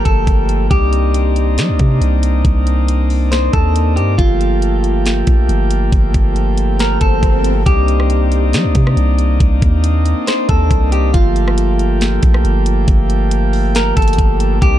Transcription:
Already playing: pipe organ F3 A3 A#3 G4
0.05 808-style bass G1, clean electric guitar A4, kick, closed hi-hat
0.27 808-style bass G1, kick, closed hi-hat
0.49 closed hi-hat
0.71 808-style bass C2, pipe organ C4 D4 D#4, clean electric guitar G4, kick, closed hi-hat
0.93 closed hi-hat
1.14 closed hi-hat
1.36 closed hi-hat
1.58 808-style bass G3, snare, closed hi-hat
1.69 808-style bass C2
1.79 808-style bass C3, kick, closed hi-hat
2.01 808-style bass C2, closed hi-hat
2.23 closed hi-hat
2.45 808-style bass C2, kick, closed hi-hat
2.67 closed hi-hat
2.88 closed hi-hat
3.10 open hi-hat
3.32 clean electric guitar C5, snare, closed hi-hat
3.53 808-style bass D#2, clean electric guitar A4, kick, closed hi-hat
3.76 closed hi-hat
3.96 808-style bass G2, clean electric guitar G4, closed hi-hat
4.18 808-style bass G1, pipe organ F3 A3 A#3 G4, clean electric guitar F4, kick, closed hi-hat, swell
4.41 closed hi-hat
4.62 closed hi-hat
4.84 closed hi-hat
5.06 snare, closed hi-hat
5.27 808-style bass A#1, kick, closed hi-hat
5.49 808-style bass G1, closed hi-hat
5.71 closed hi-hat
5.92 808-style bass G1, kick, closed hi-hat
6.14 808-style bass G1, kick, closed hi-hat
6.36 closed hi-hat
6.58 closed hi-hat
6.79 clean electric guitar A#4, snare, closed hi-hat
7.01 808-style bass G1, clean electric guitar A4, kick, closed hi-hat
7.23 808-style bass G1, kick, closed hi-hat
7.44 closed hi-hat
7.66 808-style bass C2, pipe organ A#3 C4 D4 D#4, clean electric guitar G4, kick, closed hi-hat
7.88 closed hi-hat
8.00 cross-stick
8.10 closed hi-hat
8.32 closed hi-hat
8.53 808-style bass G3, snare, closed hi-hat
8.64 808-style bass C2
8.75 808-style bass C3, kick, closed hi-hat
8.87 cross-stick
8.97 808-style bass C2, closed hi-hat
9.19 closed hi-hat
9.40 808-style bass C2, kick, closed hi-hat
9.62 808-style bass D#2, kick, closed hi-hat
9.84 closed hi-hat
10.06 closed hi-hat
10.27 clean electric guitar C5, snare, closed hi-hat
10.49 808-style bass D#2, clean electric guitar A4, kick, closed hi-hat
10.71 808-style bass C2, kick, closed hi-hat
10.92 clean electric guitar G4, closed hi-hat
11.14 808-style bass G1, pipe organ F3 A3 G4, clean electric guitar F4, kick, closed hi-hat
11.36 closed hi-hat
11.48 cross-stick
11.58 closed hi-hat
11.79 closed hi-hat
12.01 snare, closed hi-hat
12.23 808-style bass A#1, kick, closed hi-hat
12.34 cross-stick
12.45 808-style bass G1, closed hi-hat
12.66 closed hi-hat
12.88 808-style bass G1, kick, closed hi-hat
13.10 closed hi-hat
13.31 closed hi-hat
13.53 open hi-hat
13.75 clean electric guitar A#4, snare, closed hi-hat
13.97 808-style bass G1, clean electric guitar A4, kick, closed hi-hat
14.02 closed hi-hat
14.08 closed hi-hat
14.13 closed hi-hat
14.18 808-style bass G1, kick, closed hi-hat
14.40 closed hi-hat
14.62 808-style bass C2, pipe organ C4 D4 D#4, clean electric guitar G4, kick, closed hi-hat

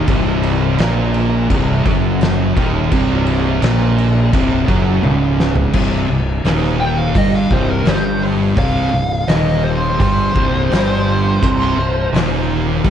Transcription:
0.08 fingered electric bass C1, distorted electric guitar C2 C3, kick, crash
0.43 crash
0.78 fingered electric bass A#1, distorted electric guitar A#2 A#3, snare, crash
1.14 crash
1.49 fingered electric bass C1, distorted electric guitar C2 C3, kick, crash
1.85 fingered electric bass F#1, distorted electric guitar F#2 F#3, kick, crash
2.21 snare, crash
2.56 fingered electric bass D#1, distorted electric guitar D#2 D#3, kick, crash
2.91 fingered electric bass C1, distorted electric guitar C2 C3, kick, crash
3.27 crash
3.62 fingered electric bass A#1, distorted electric guitar A#2 A#3, snare, crash
3.98 crash
4.33 fingered electric bass C1, distorted electric guitar C2 C3, kick, crash
4.68 fingered electric bass F#1, distorted electric guitar F#2 F#3, kick, crash
5.03 fingered electric bass C#1, distorted electric guitar C#2 C#3, high tom
5.40 snare
5.56 floor tom
5.73 fingered electric bass C1, distorted electric guitar C2 C3, kick, crash
6.09 fingered electric bass C1, distorted electric guitar C2
6.45 fingered electric bass D#1, distorted electric guitar D#2 D#3, snare, open hi-hat
6.64 snare
6.80 lead electric guitar G5
6.98 lead electric guitar F5
7.15 fingered electric bass G1, distorted electric guitar G2 G3, lead electric guitar D#5, kick, open hi-hat
7.35 lead electric guitar F5
7.51 fingered electric bass C1, distorted electric guitar C2 C3, lead electric guitar C5, kick
7.70 lead electric guitar A#4
7.85 fingered electric bass G1, distorted electric guitar G2 G3, lead electric guitar C5, snare, open hi-hat
8.57 fingered electric bass C1, distorted electric guitar C2 C3, lead electric guitar F5, kick, open hi-hat
8.92 fingered electric bass C1, distorted electric guitar C2
9.28 fingered electric bass D#1, distorted electric guitar D#2 D#3, lead electric guitar D#5, snare, open hi-hat
9.48 snare
9.64 lead electric guitar C5
10.00 fingered electric bass G1, distorted electric guitar G2 G3, lead electric guitar C5, kick, open hi-hat
10.36 fingered electric bass C1, distorted electric guitar C2 C3, kick
10.72 fingered electric bass G1, distorted electric guitar G2 G3, snare, open hi-hat
11.42 fingered electric bass C1, distorted electric guitar C2 C3, kick, crash
11.76 fingered electric bass C1, distorted electric guitar C2
12.13 fingered electric bass D#1, distorted electric guitar D#2 D#3, snare, open hi-hat
12.85 fingered electric bass G1, distorted electric guitar G2 G3, kick, open hi-hat

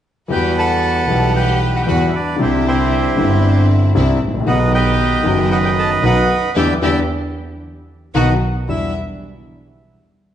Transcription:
0.28 grand piano E2 E3 G3 B3 F#4, double bass E2, string section G3 E4 F#4, violin G4, bandoneon B4 G5
0.57 violin A4, bandoneon F#5 A5
1.07 double bass B1, grand piano B1 B2 E3 G3 B3, string section G3 E4 G4
1.12 grand piano G4
1.36 violin G4, bandoneon B4 G5
1.76 violin F#4, bandoneon F#5
1.83 grand piano E3, violin G4, bandoneon G5
1.87 grand piano E2 G3 B3 F#4, double bass E2, string section G3 E4 F#4, violin F#4, bandoneon F#5
2.07 violin E4, bandoneon E5
2.14 violin D4, bandoneon D5
2.36 grand piano C2 C3 D3 G3 C4, double bass C2, string section C4 D4 E4
2.41 violin C4, grand piano E4, bandoneon E4 G4 C5
2.67 violin C4, bandoneon E4 G4 C5
3.16 double bass G1, grand piano G1 G2 D3 G3 C4, string section C4 D4 E4
3.20 grand piano E4
3.95 grand piano C2 C3 D3 G3 C4 E4, double bass C2, string section C4 D4 E4
4.21 double bass A1
4.28 grand piano G#1
4.34 grand piano A1
4.41 grand piano A#1
4.46 double bass B1, grand piano B1 B2 D#3 B3 D#4, string section D#3 B3 D#4, violin F#4, bandoneon B4 D#5 F#5
4.73 violin G4, bandoneon B4 D#5 G5
5.23 double bass F#1, grand piano F#1 F#2 D#3 F#3 B3, string section F#3 B3 D#4
5.27 grand piano F#4
5.50 violin F#4, bandoneon B4 D#5 F#5
5.64 violin G4, bandoneon G5
5.78 violin A4, bandoneon A5
6.02 double bass B1, grand piano B1 B2 D#3 F#3 B3 F#4, string section F#3 B3 D#4, violin B4, bandoneon F#5 B5
6.06 bandoneon D#5
6.55 double bass E2, grand piano D3 E3 G3, string section B3 D4 E4, violin G4, bandoneon D5 E5 G5
6.81 double bass E2, grand piano D3 E3 G3, string section B3 D4 E4, violin G4, bandoneon D5 E5 G5
8.14 double bass B1, grand piano B2 D#3 F#3, string section B3 D#4 F#4, violin F#4, bandoneon B4 D#5 F#5
8.69 double bass E2, grand piano E2 G3 D4 E4, string section G3 D4 E4, violin E5, bandoneon E6

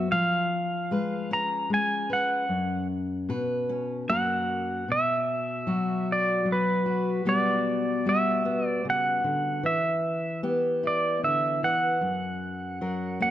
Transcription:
Already playing: steel-string acoustic guitar F#2 B3 F#4, pedal steel guitar E5
0.12 steel-string acoustic guitar F3, pedal steel guitar F5
0.91 steel-string acoustic guitar G#3 B4
1.31 steel-string acoustic guitar C#4, pedal steel guitar A#5
1.70 steel-string acoustic guitar G#3
1.74 pedal steel guitar G#5
2.10 steel-string acoustic guitar B4, pedal steel guitar F#5
2.49 steel-string acoustic guitar F#2
3.29 steel-string acoustic guitar B2 B4
3.69 steel-string acoustic guitar C#4
4.08 steel-string acoustic guitar F#2 A#3 C#4 F#4 A#4, pedal steel guitar F#5
4.88 steel-string acoustic guitar B2, pedal steel guitar E5
5.67 steel-string acoustic guitar F#3 F#4
6.12 pedal steel guitar D5
6.45 steel-string acoustic guitar F#3
6.52 pedal steel guitar B4
6.86 steel-string acoustic guitar F#4
7.25 steel-string acoustic guitar B2 G3 B3 F#4, pedal steel guitar D5
8.05 steel-string acoustic guitar G3 F#4, pedal steel guitar E5
8.45 steel-string acoustic guitar B3
8.67 pedal steel guitar D5
8.85 steel-string acoustic guitar C#3
8.90 pedal steel guitar F#5
9.24 steel-string acoustic guitar D3
9.63 steel-string acoustic guitar E3, pedal steel guitar E5
10.43 steel-string acoustic guitar B3 G4
10.83 steel-string acoustic guitar E4
10.87 pedal steel guitar D5
11.23 steel-string acoustic guitar D3, pedal steel guitar E5
11.63 steel-string acoustic guitar E3, pedal steel guitar F#5
12.01 steel-string acoustic guitar F#2
12.81 steel-string acoustic guitar F#3 A#4
13.20 steel-string acoustic guitar A#3, pedal steel guitar F#5

